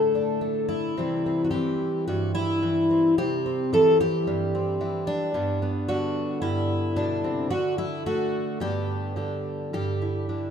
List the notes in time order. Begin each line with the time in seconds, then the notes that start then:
Already playing: A2 D3 A3 A4
0.15 D4
0.41 A3
0.69 E4
0.97 C3 E3 G3 C4
1.26 C4
1.45 F#4
1.51 E3 G4
2.08 G2 F#4
2.35 E4
2.63 E3
2.91 C4
3.18 C3 G4
3.46 C4
3.73 E3 A4
4.01 G4
4.27 G2
4.55 C4
4.81 E3
5.07 D4
5.34 G2 B3
5.62 B3
5.89 D3 F#4
6.42 G2 E4
6.96 B2 D4
7.24 C3
7.50 D3 F#4
7.78 E4
8.06 A3 F#4
8.60 G2 D3 B3 D4 G4
9.16 D3 G4
9.73 G2 G4
10.02 E4
10.29 D3